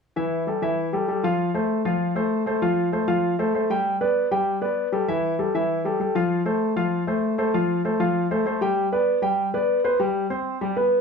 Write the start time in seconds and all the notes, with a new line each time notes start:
0.16 E3 E4 E5
0.47 G3 G4 A4
0.62 E3 E4 E5
0.93 G3 G4 A4
1.08 G3 G4 A4
1.23 F3 F4 F5
1.54 A3 A4 C5
1.85 F3 F4 F5
2.15 A3 A4 C5
2.46 A3 A4 C5
2.62 F3 F4 F5
2.92 A3 A4 C5
3.08 F3 F4 F5
3.39 A3 A4 C5
3.55 A3 A4 C5
3.70 G3 G4 G5
4.01 B3 B4 D5
4.31 G3 G4 G5
4.61 B3 B4 D5
4.92 G3 G4 A4
5.08 E3 E4 E5
5.39 G3 G4 A4
5.54 E3 E4 E5
5.85 G3 G4 A4
6.00 G3 G4 A4
6.15 F3 F4 F5
6.45 A3 A4 C5
6.76 F3 F4 F5
7.07 A3 A4 C5
7.38 A3 A4 C5
7.54 F3 F4 F5
7.85 A3 A4 C5
8.00 F3 F4 F5
8.31 A3 A4 C5
8.46 A3 A4 C5
8.61 G3 G4 G5
8.92 B3 B4 D5
9.22 G3 G4 G5
9.54 B3 B4 D5
9.84 B3 B4 C5
10.00 G3 G4
10.30 C4 C5
10.61 G3 G4
10.77 B3 B4